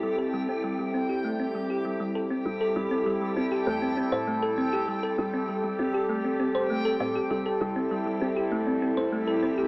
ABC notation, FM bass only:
X:1
M:4/4
L:1/16
Q:1/4=99
K:Am
V:1 name="FM bass" clef=bass
z16 | A,,, z A,,,3 z A,,, z E,,2 z A,,4- A,, | z2 A,,,3 z A,,, z6 z A,, z | C,, z C,,3 z C,, z G,,,2 z G,,,4- G,,, |]